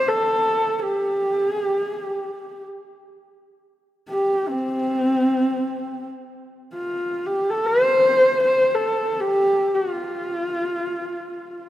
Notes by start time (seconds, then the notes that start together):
Already playing: C5
0.09 A4
0.83 G4
1.47 G#4
1.64 G4
1.83 G#4
2.00 G4
4.09 G4
4.49 C4
6.74 F4
7.27 G4
7.50 A4
7.66 C5
8.44 C5
8.75 A4
9.21 G4
9.75 F4